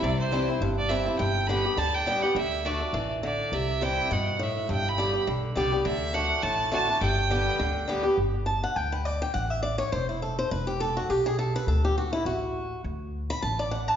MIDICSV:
0, 0, Header, 1, 4, 480
1, 0, Start_track
1, 0, Key_signature, 1, "major"
1, 0, Tempo, 291262
1, 51, Time_signature, 4, 2, 24, 8
1, 23011, End_track
2, 0, Start_track
2, 0, Title_t, "Fiddle"
2, 0, Program_c, 0, 110
2, 46, Note_on_c, 0, 74, 103
2, 301, Note_off_c, 0, 74, 0
2, 311, Note_on_c, 0, 72, 92
2, 959, Note_off_c, 0, 72, 0
2, 1283, Note_on_c, 0, 74, 93
2, 1468, Note_on_c, 0, 76, 89
2, 1493, Note_off_c, 0, 74, 0
2, 1940, Note_off_c, 0, 76, 0
2, 1950, Note_on_c, 0, 79, 107
2, 2425, Note_on_c, 0, 83, 115
2, 2449, Note_off_c, 0, 79, 0
2, 2938, Note_on_c, 0, 81, 116
2, 2962, Note_off_c, 0, 83, 0
2, 3199, Note_on_c, 0, 79, 106
2, 3224, Note_off_c, 0, 81, 0
2, 3666, Note_on_c, 0, 78, 94
2, 3690, Note_off_c, 0, 79, 0
2, 3885, Note_off_c, 0, 78, 0
2, 3900, Note_on_c, 0, 76, 106
2, 4373, Note_on_c, 0, 74, 92
2, 4398, Note_off_c, 0, 76, 0
2, 5119, Note_off_c, 0, 74, 0
2, 5353, Note_on_c, 0, 74, 88
2, 5827, Note_on_c, 0, 76, 96
2, 5851, Note_off_c, 0, 74, 0
2, 6309, Note_on_c, 0, 79, 106
2, 6333, Note_off_c, 0, 76, 0
2, 6798, Note_on_c, 0, 78, 92
2, 6822, Note_off_c, 0, 79, 0
2, 7298, Note_on_c, 0, 76, 79
2, 7323, Note_off_c, 0, 78, 0
2, 7753, Note_off_c, 0, 76, 0
2, 7769, Note_on_c, 0, 79, 99
2, 8052, Note_on_c, 0, 83, 101
2, 8077, Note_off_c, 0, 79, 0
2, 8716, Note_off_c, 0, 83, 0
2, 9161, Note_on_c, 0, 74, 90
2, 9610, Note_off_c, 0, 74, 0
2, 9649, Note_on_c, 0, 76, 103
2, 10127, Note_on_c, 0, 78, 111
2, 10152, Note_off_c, 0, 76, 0
2, 10588, Note_on_c, 0, 81, 111
2, 10613, Note_off_c, 0, 78, 0
2, 11077, Note_off_c, 0, 81, 0
2, 11086, Note_on_c, 0, 81, 108
2, 11532, Note_off_c, 0, 81, 0
2, 11570, Note_on_c, 0, 79, 116
2, 13208, Note_off_c, 0, 79, 0
2, 23011, End_track
3, 0, Start_track
3, 0, Title_t, "Steel-string acoustic guitar"
3, 0, Program_c, 1, 25
3, 62, Note_on_c, 1, 48, 84
3, 523, Note_on_c, 1, 52, 80
3, 534, Note_on_c, 1, 55, 97
3, 546, Note_on_c, 1, 60, 97
3, 557, Note_on_c, 1, 64, 95
3, 772, Note_off_c, 1, 64, 0
3, 784, Note_off_c, 1, 52, 0
3, 789, Note_off_c, 1, 55, 0
3, 792, Note_on_c, 1, 64, 61
3, 795, Note_off_c, 1, 60, 0
3, 824, Note_on_c, 1, 60, 56
3, 974, Note_off_c, 1, 48, 0
3, 1000, Note_off_c, 1, 64, 0
3, 1015, Note_on_c, 1, 43, 94
3, 1016, Note_off_c, 1, 60, 0
3, 1473, Note_on_c, 1, 52, 96
3, 1481, Note_on_c, 1, 55, 88
3, 1491, Note_on_c, 1, 60, 98
3, 1504, Note_on_c, 1, 64, 101
3, 1730, Note_off_c, 1, 64, 0
3, 1738, Note_off_c, 1, 52, 0
3, 1743, Note_off_c, 1, 55, 0
3, 1748, Note_off_c, 1, 60, 0
3, 1750, Note_on_c, 1, 64, 62
3, 1778, Note_on_c, 1, 60, 47
3, 1931, Note_off_c, 1, 43, 0
3, 1959, Note_off_c, 1, 64, 0
3, 1962, Note_on_c, 1, 43, 91
3, 1973, Note_off_c, 1, 60, 0
3, 2455, Note_on_c, 1, 50, 95
3, 2456, Note_on_c, 1, 55, 93
3, 2471, Note_on_c, 1, 59, 104
3, 2478, Note_on_c, 1, 67, 97
3, 2703, Note_off_c, 1, 67, 0
3, 2710, Note_off_c, 1, 50, 0
3, 2710, Note_off_c, 1, 55, 0
3, 2718, Note_off_c, 1, 59, 0
3, 2723, Note_on_c, 1, 67, 53
3, 2744, Note_on_c, 1, 59, 54
3, 2884, Note_off_c, 1, 43, 0
3, 2924, Note_on_c, 1, 50, 100
3, 2925, Note_off_c, 1, 67, 0
3, 2936, Note_off_c, 1, 59, 0
3, 3381, Note_off_c, 1, 50, 0
3, 3401, Note_on_c, 1, 50, 87
3, 3413, Note_on_c, 1, 55, 100
3, 3421, Note_on_c, 1, 59, 96
3, 3428, Note_on_c, 1, 67, 91
3, 3662, Note_off_c, 1, 50, 0
3, 3663, Note_off_c, 1, 67, 0
3, 3668, Note_off_c, 1, 55, 0
3, 3673, Note_off_c, 1, 59, 0
3, 3682, Note_on_c, 1, 67, 62
3, 3708, Note_on_c, 1, 59, 51
3, 3885, Note_off_c, 1, 67, 0
3, 3893, Note_on_c, 1, 50, 90
3, 3898, Note_off_c, 1, 59, 0
3, 4345, Note_off_c, 1, 50, 0
3, 4364, Note_on_c, 1, 50, 91
3, 4378, Note_on_c, 1, 57, 97
3, 4386, Note_on_c, 1, 62, 102
3, 4389, Note_on_c, 1, 66, 108
3, 4600, Note_off_c, 1, 66, 0
3, 4620, Note_on_c, 1, 66, 60
3, 4624, Note_off_c, 1, 50, 0
3, 4625, Note_off_c, 1, 62, 0
3, 4631, Note_off_c, 1, 57, 0
3, 4645, Note_on_c, 1, 62, 45
3, 4833, Note_off_c, 1, 66, 0
3, 4841, Note_on_c, 1, 52, 89
3, 4846, Note_off_c, 1, 62, 0
3, 5305, Note_off_c, 1, 52, 0
3, 5325, Note_on_c, 1, 50, 83
3, 5786, Note_off_c, 1, 50, 0
3, 5813, Note_on_c, 1, 48, 91
3, 6282, Note_on_c, 1, 52, 87
3, 6295, Note_on_c, 1, 55, 98
3, 6300, Note_on_c, 1, 60, 97
3, 6308, Note_on_c, 1, 64, 95
3, 6728, Note_off_c, 1, 48, 0
3, 6744, Note_off_c, 1, 52, 0
3, 6751, Note_off_c, 1, 55, 0
3, 6754, Note_off_c, 1, 60, 0
3, 6757, Note_off_c, 1, 64, 0
3, 6771, Note_on_c, 1, 47, 96
3, 7229, Note_off_c, 1, 47, 0
3, 7240, Note_on_c, 1, 45, 88
3, 7703, Note_off_c, 1, 45, 0
3, 7730, Note_on_c, 1, 43, 89
3, 8203, Note_on_c, 1, 50, 79
3, 8209, Note_on_c, 1, 55, 88
3, 8222, Note_on_c, 1, 59, 92
3, 8233, Note_on_c, 1, 67, 107
3, 8441, Note_off_c, 1, 67, 0
3, 8460, Note_on_c, 1, 67, 58
3, 8461, Note_off_c, 1, 50, 0
3, 8465, Note_off_c, 1, 55, 0
3, 8471, Note_off_c, 1, 59, 0
3, 8488, Note_on_c, 1, 59, 46
3, 8646, Note_off_c, 1, 43, 0
3, 8672, Note_off_c, 1, 67, 0
3, 8686, Note_off_c, 1, 59, 0
3, 8689, Note_on_c, 1, 50, 96
3, 9135, Note_off_c, 1, 50, 0
3, 9154, Note_on_c, 1, 50, 96
3, 9165, Note_on_c, 1, 55, 89
3, 9177, Note_on_c, 1, 59, 94
3, 9179, Note_on_c, 1, 67, 113
3, 9410, Note_off_c, 1, 67, 0
3, 9417, Note_off_c, 1, 50, 0
3, 9422, Note_off_c, 1, 55, 0
3, 9428, Note_off_c, 1, 59, 0
3, 9430, Note_on_c, 1, 67, 61
3, 9453, Note_on_c, 1, 59, 47
3, 9637, Note_off_c, 1, 67, 0
3, 9640, Note_on_c, 1, 50, 94
3, 9648, Note_off_c, 1, 59, 0
3, 10084, Note_off_c, 1, 50, 0
3, 10103, Note_on_c, 1, 50, 80
3, 10119, Note_on_c, 1, 57, 85
3, 10122, Note_on_c, 1, 62, 102
3, 10133, Note_on_c, 1, 66, 101
3, 10573, Note_off_c, 1, 50, 0
3, 10581, Note_off_c, 1, 57, 0
3, 10583, Note_off_c, 1, 62, 0
3, 10588, Note_off_c, 1, 66, 0
3, 10598, Note_on_c, 1, 45, 95
3, 11066, Note_on_c, 1, 50, 101
3, 11073, Note_on_c, 1, 57, 96
3, 11085, Note_on_c, 1, 62, 92
3, 11097, Note_on_c, 1, 66, 102
3, 11325, Note_off_c, 1, 66, 0
3, 11332, Note_off_c, 1, 50, 0
3, 11336, Note_off_c, 1, 57, 0
3, 11342, Note_off_c, 1, 62, 0
3, 11345, Note_on_c, 1, 66, 62
3, 11366, Note_on_c, 1, 62, 50
3, 11519, Note_off_c, 1, 45, 0
3, 11553, Note_off_c, 1, 66, 0
3, 11558, Note_on_c, 1, 43, 99
3, 11564, Note_off_c, 1, 62, 0
3, 12035, Note_on_c, 1, 50, 83
3, 12039, Note_on_c, 1, 55, 93
3, 12049, Note_on_c, 1, 59, 108
3, 12061, Note_on_c, 1, 67, 89
3, 12479, Note_off_c, 1, 43, 0
3, 12494, Note_off_c, 1, 50, 0
3, 12501, Note_off_c, 1, 55, 0
3, 12506, Note_off_c, 1, 59, 0
3, 12512, Note_off_c, 1, 67, 0
3, 12514, Note_on_c, 1, 50, 102
3, 12960, Note_off_c, 1, 50, 0
3, 12980, Note_on_c, 1, 50, 86
3, 12996, Note_on_c, 1, 55, 100
3, 13003, Note_on_c, 1, 59, 101
3, 13009, Note_on_c, 1, 67, 106
3, 13217, Note_off_c, 1, 67, 0
3, 13237, Note_on_c, 1, 67, 58
3, 13247, Note_off_c, 1, 59, 0
3, 13248, Note_off_c, 1, 50, 0
3, 13257, Note_off_c, 1, 55, 0
3, 13267, Note_on_c, 1, 59, 46
3, 13459, Note_off_c, 1, 67, 0
3, 13474, Note_off_c, 1, 59, 0
3, 13942, Note_on_c, 1, 81, 82
3, 14212, Note_off_c, 1, 81, 0
3, 14231, Note_on_c, 1, 78, 101
3, 14437, Note_off_c, 1, 78, 0
3, 14437, Note_on_c, 1, 79, 100
3, 14700, Note_off_c, 1, 79, 0
3, 14706, Note_on_c, 1, 71, 75
3, 14918, Note_off_c, 1, 71, 0
3, 14918, Note_on_c, 1, 74, 88
3, 15180, Note_off_c, 1, 74, 0
3, 15191, Note_on_c, 1, 79, 112
3, 15382, Note_off_c, 1, 79, 0
3, 15389, Note_on_c, 1, 78, 89
3, 15658, Note_off_c, 1, 78, 0
3, 15658, Note_on_c, 1, 76, 90
3, 15857, Note_off_c, 1, 76, 0
3, 15863, Note_on_c, 1, 74, 94
3, 16115, Note_off_c, 1, 74, 0
3, 16121, Note_on_c, 1, 73, 106
3, 16343, Note_off_c, 1, 73, 0
3, 16353, Note_on_c, 1, 72, 96
3, 16618, Note_off_c, 1, 72, 0
3, 16626, Note_on_c, 1, 64, 52
3, 16836, Note_off_c, 1, 64, 0
3, 16847, Note_on_c, 1, 69, 80
3, 17106, Note_off_c, 1, 69, 0
3, 17116, Note_on_c, 1, 72, 100
3, 17319, Note_off_c, 1, 72, 0
3, 17326, Note_on_c, 1, 71, 92
3, 17585, Note_off_c, 1, 71, 0
3, 17585, Note_on_c, 1, 67, 81
3, 17796, Note_off_c, 1, 67, 0
3, 17805, Note_on_c, 1, 69, 94
3, 18065, Note_off_c, 1, 69, 0
3, 18075, Note_on_c, 1, 66, 82
3, 18288, Note_off_c, 1, 66, 0
3, 18288, Note_on_c, 1, 67, 85
3, 18547, Note_off_c, 1, 67, 0
3, 18556, Note_on_c, 1, 68, 103
3, 18757, Note_off_c, 1, 68, 0
3, 18764, Note_on_c, 1, 69, 87
3, 19025, Note_off_c, 1, 69, 0
3, 19046, Note_on_c, 1, 71, 96
3, 19241, Note_off_c, 1, 71, 0
3, 19248, Note_on_c, 1, 69, 86
3, 19507, Note_off_c, 1, 69, 0
3, 19522, Note_on_c, 1, 67, 88
3, 19725, Note_off_c, 1, 67, 0
3, 19737, Note_on_c, 1, 66, 85
3, 19978, Note_off_c, 1, 66, 0
3, 19985, Note_on_c, 1, 64, 89
3, 20197, Note_off_c, 1, 64, 0
3, 20208, Note_on_c, 1, 66, 86
3, 21103, Note_off_c, 1, 66, 0
3, 21920, Note_on_c, 1, 83, 106
3, 22116, Note_off_c, 1, 83, 0
3, 22123, Note_on_c, 1, 81, 99
3, 22386, Note_off_c, 1, 81, 0
3, 22399, Note_on_c, 1, 74, 84
3, 22601, Note_on_c, 1, 78, 96
3, 22606, Note_off_c, 1, 74, 0
3, 22873, Note_off_c, 1, 78, 0
3, 22873, Note_on_c, 1, 81, 113
3, 23011, Note_off_c, 1, 81, 0
3, 23011, End_track
4, 0, Start_track
4, 0, Title_t, "Upright bass"
4, 0, Program_c, 2, 32
4, 42, Note_on_c, 2, 36, 95
4, 807, Note_off_c, 2, 36, 0
4, 1003, Note_on_c, 2, 31, 87
4, 1768, Note_off_c, 2, 31, 0
4, 1974, Note_on_c, 2, 31, 102
4, 2735, Note_off_c, 2, 31, 0
4, 2915, Note_on_c, 2, 38, 78
4, 3683, Note_off_c, 2, 38, 0
4, 3871, Note_on_c, 2, 38, 90
4, 4641, Note_off_c, 2, 38, 0
4, 4828, Note_on_c, 2, 33, 89
4, 5598, Note_off_c, 2, 33, 0
4, 5799, Note_on_c, 2, 36, 88
4, 6565, Note_off_c, 2, 36, 0
4, 6774, Note_on_c, 2, 43, 84
4, 7533, Note_off_c, 2, 43, 0
4, 7730, Note_on_c, 2, 31, 93
4, 8490, Note_off_c, 2, 31, 0
4, 8691, Note_on_c, 2, 35, 84
4, 9097, Note_off_c, 2, 35, 0
4, 9172, Note_on_c, 2, 36, 89
4, 9578, Note_off_c, 2, 36, 0
4, 9643, Note_on_c, 2, 38, 94
4, 10405, Note_off_c, 2, 38, 0
4, 10598, Note_on_c, 2, 33, 84
4, 11362, Note_off_c, 2, 33, 0
4, 11557, Note_on_c, 2, 31, 98
4, 12322, Note_off_c, 2, 31, 0
4, 12520, Note_on_c, 2, 38, 84
4, 13283, Note_off_c, 2, 38, 0
4, 13474, Note_on_c, 2, 31, 82
4, 14240, Note_off_c, 2, 31, 0
4, 14443, Note_on_c, 2, 38, 79
4, 15206, Note_off_c, 2, 38, 0
4, 15410, Note_on_c, 2, 33, 86
4, 16171, Note_off_c, 2, 33, 0
4, 16361, Note_on_c, 2, 28, 78
4, 17125, Note_off_c, 2, 28, 0
4, 17329, Note_on_c, 2, 28, 92
4, 18090, Note_off_c, 2, 28, 0
4, 18281, Note_on_c, 2, 35, 78
4, 19046, Note_off_c, 2, 35, 0
4, 19230, Note_on_c, 2, 38, 95
4, 20000, Note_off_c, 2, 38, 0
4, 20194, Note_on_c, 2, 33, 81
4, 20962, Note_off_c, 2, 33, 0
4, 21166, Note_on_c, 2, 38, 94
4, 21930, Note_off_c, 2, 38, 0
4, 22137, Note_on_c, 2, 33, 85
4, 22898, Note_off_c, 2, 33, 0
4, 23011, End_track
0, 0, End_of_file